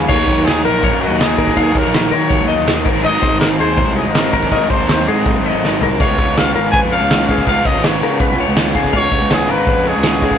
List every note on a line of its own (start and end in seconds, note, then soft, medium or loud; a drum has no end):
0.08 0.25 D#2 loud
0.08 0.46 D#3 medium
0.08 0.30 F#3 medium
0.08 0.29 A#3 medium
0.08 0.27 D#4 loud
0.08 0.47 C#5 loud
0.08 0.28 F5 medium
0.08 kick loud
0.08 crash loud
0.08 crash medium
0.27 0.36 D#2 medium
0.27 0.47 F#3 medium
0.27 0.47 A#3 medium
0.27 0.48 D#4 medium
0.27 0.65 C#5 medium
0.27 kick medium
0.27 crash medium
0.36 0.61 D#2 medium
0.46 0.83 D#3 loud
0.46 0.65 F#3 medium
0.46 0.65 A#3 loud
0.46 0.64 D#4 loud
0.46 0.64 G#4 loud
0.46 snare loud
0.46 crash medium
0.64 0.89 A#1 medium
0.64 1.20 F#3 medium
0.64 1.20 A#3 medium
0.64 1.21 D#4 medium
0.64 1.02 A#4 loud
0.64 0.83 A#4 medium
0.64 crash medium
0.83 1.03 C#5 loud
0.83 kick loud
0.83 crash medium
0.90 1.08 F#2 medium
1.01 1.22 F#4 medium
1.01 1.39 D#5 medium
1.01 crash medium
1.10 1.51 D#2 loud
1.19 1.56 D#3 medium
1.19 1.40 F#3 medium
1.19 1.39 A#3 medium
1.19 1.39 D#4 medium
1.19 1.57 G#4 medium
1.19 snare loud
1.19 crash loud
1.30 snare soft
1.38 1.57 F#3 medium
1.38 1.58 A#3 medium
1.38 1.59 D#4 medium
1.38 1.57 A#4 medium
1.38 kick medium
1.38 crash medium
1.47 kick medium
1.47 snare soft
1.57 1.73 D#2 loud
1.57 1.91 D#3 medium
1.57 1.77 F#3 medium
1.57 1.74 A#3 medium
1.57 1.75 D#4 loud
1.57 1.79 G#4 medium
1.57 1.75 F5 medium
1.57 kick medium
1.57 crash medium
1.75 1.83 D#2 medium
1.75 1.93 F#3 medium
1.75 1.92 A#3 medium
1.75 1.94 D#4 medium
1.75 1.94 A#4 loud
1.75 2.12 C#5 medium
1.75 kick medium
1.75 crash medium
1.84 2.09 A#1 medium
1.93 2.30 D#3 loud
1.93 2.12 F#3 medium
1.93 2.11 A#3 loud
1.93 2.11 D#4 loud
1.93 2.16 A#4 medium
1.93 snare loud
1.93 crash medium
2.11 2.41 D#3 loud
2.11 2.67 F#3 medium
2.11 2.67 A#3 medium
2.11 2.68 D#4 medium
2.11 2.30 A#4 medium
2.11 2.50 C#5 medium
2.11 crash medium
2.29 2.47 C#5 medium
2.29 kick loud
2.29 crash medium
2.40 2.56 D#2 medium
2.48 2.85 D#5 medium
2.48 crash medium
2.59 2.83 D#2 medium
2.67 2.84 D#3 medium
2.67 2.85 F#3 medium
2.67 2.85 A#3 medium
2.67 2.84 D#4 medium
2.67 snare loud
2.67 crash medium
2.78 snare soft
2.85 3.02 G#1 medium
2.85 3.04 G#2 medium
2.85 3.04 D#3 medium
2.85 3.05 F#3 medium
2.85 3.05 C4 medium
2.85 3.06 D#4 medium
2.85 3.04 A#4 medium
2.85 kick loud
2.85 crash loud
2.96 snare soft
3.04 3.21 G#1 loud
3.04 3.42 G#2 medium
3.04 3.41 D#3 medium
3.04 3.24 F#3 medium
3.04 3.24 C4 loud
3.04 3.22 D#4 loud
3.04 3.21 D#5 medium
3.04 3.39 D#5 loud
3.04 crash medium
3.22 3.30 G#1 medium
3.22 3.43 F#3 medium
3.22 3.44 C4 medium
3.22 3.44 D#4 medium
3.22 3.59 C5 medium
3.22 kick loud
3.22 crash medium
3.32 3.57 G#1 loud
3.40 4.20 G#2 loud
3.40 3.79 D#3 loud
3.40 3.60 F#3 loud
3.40 3.49 A#4 loud
3.40 snare loud
3.40 crash medium
3.44 3.60 C4 loud
3.44 3.59 D#4 loud
3.58 3.84 D#2 medium
3.58 4.16 F#3 soft
3.58 4.17 C4 medium
3.58 4.17 D#4 medium
3.58 3.78 G#4 medium
3.58 3.94 C5 loud
3.58 crash medium
3.77 3.96 C5 medium
3.77 kick loud
3.77 crash medium
3.88 4.04 C2 medium
3.95 4.06 G#4 medium
3.95 4.33 D#5 medium
3.95 crash medium
4.05 4.47 G#1 medium
4.05 4.14 C5 medium
4.12 4.51 D#3 medium
4.12 4.50 A#4 medium
4.12 snare loud
4.12 crash medium
4.17 4.34 F#3 medium
4.17 4.33 C4 medium
4.17 4.33 D#4 medium
4.26 snare soft
4.33 4.53 F#3 medium
4.33 4.53 C4 medium
4.33 4.53 D#4 medium
4.33 4.52 A#4 medium
4.33 kick medium
4.33 crash medium
4.43 kick medium
4.43 snare soft
4.51 4.68 G#1 loud
4.51 4.89 G#2 medium
4.51 4.89 D#3 loud
4.51 4.73 F#3 medium
4.51 4.71 C4 medium
4.51 4.70 D#4 medium
4.51 4.72 A#4 medium
4.51 4.70 D#5 loud
4.51 kick medium
4.51 crash medium
4.70 4.79 G#1 medium
4.70 4.90 F#3 medium
4.70 4.91 C4 medium
4.70 4.91 D#4 medium
4.70 5.07 C5 medium
4.70 4.89 C5 medium
4.70 kick medium
4.70 crash medium
4.80 5.05 D#2 medium
4.88 5.27 G#2 loud
4.88 5.27 D#3 medium
4.88 5.10 F#3 medium
4.88 5.09 C4 loud
4.88 5.08 D#4 loud
4.88 5.09 C5 medium
4.88 snare loud
4.88 crash medium
5.06 5.37 G#2 medium
5.06 5.65 D#4 medium
5.06 5.26 G#4 medium
5.06 5.44 D#5 medium
5.06 crash medium
5.10 5.64 F#3 medium
5.10 5.64 C4 medium
5.25 5.46 C5 medium
5.25 kick loud
5.25 crash medium
5.36 5.52 G#1 medium
5.43 5.82 D#5 medium
5.43 crash medium
5.55 5.79 G#1 medium
5.64 5.99 D#3 medium
5.64 5.83 F#3 medium
5.64 5.83 C4 medium
5.64 5.81 D#4 medium
5.64 snare medium
5.81 5.98 C2 loud
5.81 6.00 F#3 medium
5.81 6.00 C4 medium
5.81 5.99 D#4 medium
5.81 6.00 A#4 medium
5.81 floor tom medium
6.00 6.16 C#2 loud
6.00 6.37 C#3 medium
6.00 6.19 G#3 medium
6.00 6.19 B3 loud
6.00 6.17 F4 loud
6.00 6.39 C#5 loud
6.00 6.18 F5 medium
6.00 kick loud
6.00 crash medium
6.18 6.26 C#2 medium
6.18 6.38 G#3 medium
6.18 6.38 B3 medium
6.18 6.39 F4 medium
6.18 6.55 C#5 medium
6.18 kick medium
6.18 crash medium
6.28 6.52 C#2 medium
6.37 7.11 C#3 medium
6.37 6.57 G#3 loud
6.37 6.56 B3 loud
6.37 6.54 F4 loud
6.37 6.53 F5 loud
6.37 snare loud
6.37 crash medium
6.54 6.80 G#1 medium
6.54 7.12 G#3 medium
6.54 7.11 B3 medium
6.54 7.12 F4 medium
6.54 6.73 A#4 medium
6.54 6.71 F5 loud
6.54 crash medium
6.71 6.92 B4 medium
6.71 6.80 G#5 loud
6.71 kick loud
6.71 crash medium
6.83 6.99 F2 medium
6.92 7.29 C#5 medium
6.92 7.26 F5 loud
6.92 crash medium
7.01 7.42 C#2 loud
7.10 7.48 C#3 medium
7.10 7.32 G#3 medium
7.10 7.31 B3 medium
7.10 7.30 F4 medium
7.10 snare loud
7.10 crash medium
7.21 snare soft
7.28 7.49 B3 medium
7.28 7.50 F4 medium
7.28 7.48 G#4 medium
7.28 7.45 F5 medium
7.28 kick medium
7.28 crash medium
7.32 7.49 G#3 medium
7.38 kick medium
7.38 snare soft
7.47 7.63 C#2 loud
7.47 7.84 C#3 medium
7.47 7.68 G#3 loud
7.47 7.67 B3 loud
7.47 7.66 F4 loud
7.47 7.68 F5 loud
7.47 7.67 F5 medium
7.47 kick loud
7.47 crash medium
7.65 7.74 C#2 medium
7.65 7.85 G#3 medium
7.65 7.85 B3 medium
7.65 7.86 F4 medium
7.65 8.03 C#5 medium
7.65 7.86 D#5 loud
7.65 kick medium
7.65 crash medium
7.75 7.99 G#1 medium
7.83 8.56 C#3 loud
7.83 8.04 G#3 loud
7.83 8.02 B3 loud
7.83 8.02 F4 loud
7.83 8.21 C#5 medium
7.83 snare medium
7.83 crash medium
8.01 8.32 C#3 loud
8.01 8.57 G#3 medium
8.01 8.58 B3 medium
8.01 8.58 F4 medium
8.01 8.20 A#4 medium
8.01 crash medium
8.20 8.39 B4 loud
8.20 kick loud
8.20 crash medium
8.30 8.46 C#2 loud
8.38 8.76 C#5 medium
8.38 crash medium
8.48 8.72 C#2 loud
8.56 8.93 C#3 medium
8.56 8.77 G#3 medium
8.56 8.76 B3 medium
8.56 8.75 F4 medium
8.56 snare loud
8.56 crash medium
8.67 snare soft
8.74 8.92 C#3 loud
8.74 8.94 G#3 medium
8.74 8.95 B3 medium
8.74 8.95 F4 medium
8.74 8.94 G#4 medium
8.74 kick medium
8.74 crash medium
8.84 kick medium
8.84 snare soft
8.92 9.10 C#2 loud
8.92 9.30 C#3 medium
8.92 9.14 G#3 medium
8.92 9.13 B3 loud
8.92 9.12 F4 loud
8.92 9.34 C#5 loud
8.92 9.12 F5 medium
8.92 kick loud
8.92 crash medium
9.11 9.20 C#2 medium
9.11 9.31 G#3 medium
9.11 9.32 B3 medium
9.11 9.32 F4 medium
9.11 9.48 C#5 medium
9.11 kick medium
9.11 crash medium
9.21 9.46 C#2 medium
9.30 10.04 C#3 medium
9.30 9.51 G#3 loud
9.30 9.50 B3 loud
9.30 9.48 F4 loud
9.30 9.52 G#4 loud
9.30 snare loud
9.30 crash medium
9.48 9.73 G#1 medium
9.48 10.05 G#3 medium
9.48 10.04 B3 medium
9.48 10.06 F4 medium
9.48 9.67 A#4 medium
9.48 9.89 B4 loud
9.48 crash medium
9.67 9.87 B4 medium
9.67 kick loud
9.67 crash medium
9.76 9.93 F2 medium
9.85 10.38 G#4 medium
9.85 10.23 C#5 medium
9.85 crash medium
9.96 10.37 C#2 medium
10.03 10.38 C#3 medium
10.03 10.23 G#3 medium
10.03 10.22 B3 medium
10.03 snare loud
10.03 crash medium
10.07 10.20 F4 medium
10.14 snare soft
10.22 10.38 G#3 medium
10.22 10.38 B3 medium
10.22 10.38 F4 medium
10.22 10.38 G#4 medium
10.22 kick medium
10.22 crash medium
10.31 kick medium